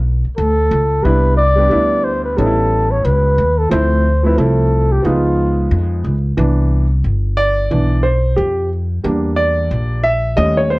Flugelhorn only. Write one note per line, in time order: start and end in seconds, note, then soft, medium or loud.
0.00 0.12 B4 loud
0.37 1.05 A4 loud
1.04 1.36 B4 loud
1.37 2.05 D5 loud
2.04 2.24 C5 medium
2.24 2.39 B4 medium
2.37 2.92 A4 loud
2.91 3.06 C#5 medium
3.05 3.60 B4 medium
3.58 3.71 A4 medium
3.71 4.26 C5 loud
4.25 4.40 B4 medium
4.38 4.93 A4 medium
4.92 5.07 G4 medium
5.06 6.05 F4 medium